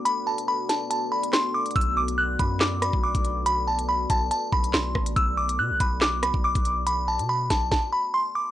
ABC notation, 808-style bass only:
X:1
M:4/4
L:1/16
Q:1/4=141
K:Bm
V:1 name="808-style bass" clef=bass
z16 | B,,,6 F,,4- F,, B,,,2 B,,,3- | B,,,6 B,,,2 z2 B,,,2 B,,,2 A,,,2 | B,,,4 B,, B,,, B,,,4- B,,, B,,,2 B,,,3- |
B,,,3 B,,3 B,,,2 z8 |]